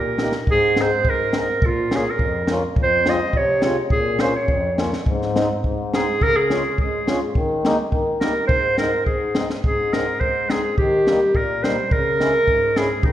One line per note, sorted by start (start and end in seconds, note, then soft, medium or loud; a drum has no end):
0.00 0.33 A#2 medium
0.00 0.35 A#4 medium
0.18 0.33 A#3 soft
0.18 0.33 D#4 soft
0.18 0.33 G4 medium
0.18 snare medium
0.32 snare soft
0.47 0.91 G#2 medium
0.47 0.83 G#4 loud
0.47 kick medium
0.76 0.91 C4 medium
0.76 0.91 D#4 medium
0.76 0.91 G#4 medium
0.76 snare medium
0.81 1.11 C5 medium
1.05 1.48 G#2 medium
1.05 kick medium
1.09 1.37 A#4 loud
1.33 1.47 C4 medium
1.33 1.47 D#4 medium
1.33 1.48 G#4 medium
1.33 snare medium
1.40 1.67 A#4 medium
1.62 2.06 A#2 medium
1.62 1.97 F4 medium
1.62 kick medium
1.91 2.04 A#3 medium
1.91 2.05 C#4 medium
1.91 2.05 F4 medium
1.91 snare medium
1.95 2.12 G#4 medium
2.11 2.51 A#4 medium
2.19 2.63 F2 medium
2.19 kick medium
2.47 2.62 A#3 medium
2.47 2.62 C#4 medium
2.47 snare medium
2.52 2.63 F4 medium
2.76 3.20 F2 medium
2.76 kick medium
2.82 3.11 C5 loud
3.06 3.19 G#3 medium
3.06 3.19 C4 medium
3.06 3.20 F4 medium
3.06 3.38 D#5 medium
3.06 snare medium
3.33 3.78 C3 medium
3.33 3.63 C#5 medium
3.33 kick medium
3.62 3.76 G#3 medium
3.62 3.76 C4 medium
3.62 3.77 F4 medium
3.62 3.77 C#5 medium
3.62 snare medium
3.90 4.35 A#2 medium
3.90 4.22 G#4 medium
3.90 kick medium
4.19 4.33 A#3 medium
4.19 4.33 C#4 medium
4.19 4.34 F4 medium
4.19 4.35 C5 medium
4.19 snare medium
4.36 4.76 C#5 medium
4.48 4.92 F2 medium
4.48 kick medium
4.77 4.90 A#3 medium
4.77 4.91 C#4 medium
4.77 4.91 F4 medium
4.77 snare medium
4.93 snare medium
5.06 5.49 G#2 medium
5.06 kick medium
5.22 snare soft
5.34 5.48 G#3 medium
5.34 5.48 C4 medium
5.34 5.48 D#4 medium
5.34 snare medium
5.64 6.07 G#2 medium
5.64 kick medium
5.93 6.06 G#3 medium
5.93 6.06 C4 medium
5.93 6.06 D#4 medium
5.93 6.24 G#4 medium
5.93 snare medium
6.21 6.64 C#3 medium
6.21 6.38 A#4 loud
6.21 kick medium
6.36 6.78 G#4 medium
6.49 6.62 G#3 medium
6.49 6.62 C#4 medium
6.49 6.63 F4 medium
6.49 snare medium
6.78 7.21 G#2 medium
6.78 7.19 G#4 medium
6.78 kick medium
7.07 7.20 G#3 medium
7.07 7.20 C#4 medium
7.07 7.20 F4 medium
7.07 snare medium
7.35 7.78 D#3 medium
7.35 kick medium
7.65 7.77 G#3 medium
7.65 7.77 A#3 medium
7.65 7.77 D#4 loud
7.65 snare medium
7.92 8.35 D#3 medium
7.92 kick medium
8.20 8.34 G3 medium
8.20 8.34 A#3 medium
8.20 8.34 D#4 medium
8.20 8.47 A#4 medium
8.20 snare medium
8.47 8.92 G#2 medium
8.47 8.75 C5 loud
8.47 kick medium
8.78 8.91 G#3 medium
8.78 8.91 C4 medium
8.78 8.92 D#4 medium
8.78 9.04 A#4 medium
8.78 snare medium
9.06 9.49 G#2 medium
9.06 9.46 G#4 medium
9.06 kick medium
9.35 9.48 G#3 medium
9.35 9.49 C4 soft
9.35 9.49 D#4 medium
9.35 snare medium
9.50 snare medium
9.64 10.07 G#2 medium
9.64 9.95 G#4 medium
9.64 kick medium
9.93 10.05 G#3 medium
9.93 10.06 C4 medium
9.93 10.06 D#4 medium
9.93 10.21 A#4 medium
9.93 snare medium
10.20 10.63 G#2 medium
10.20 10.52 C5 loud
10.20 kick soft
10.49 10.62 G#3 medium
10.49 10.62 C4 medium
10.49 10.62 D#4 medium
10.49 10.77 G#4 medium
10.49 snare medium
10.78 11.20 D#3 medium
10.78 11.37 G4 loud
10.78 kick medium
11.07 11.19 G3 medium
11.07 11.20 A#3 medium
11.07 11.20 D#4 medium
11.07 snare medium
11.35 11.78 A#2 medium
11.35 11.65 A#4 medium
11.35 kick medium
11.63 11.77 G3 medium
11.63 11.77 A#3 medium
11.63 11.77 D#4 medium
11.63 11.93 C5 medium
11.63 snare medium
11.91 12.34 C#3 medium
11.91 12.79 A#4 loud
11.91 kick medium
12.20 12.32 G#3 medium
12.20 12.33 C#4 medium
12.20 12.34 E4 medium
12.20 snare medium
12.48 12.91 G#2 medium
12.48 kick medium
12.76 12.89 G#3 medium
12.76 12.89 C#4 medium
12.76 12.89 E4 medium
12.76 13.05 G#4 medium
12.76 snare medium
13.03 13.12 D#3 medium
13.03 13.12 D#4 medium
13.03 kick medium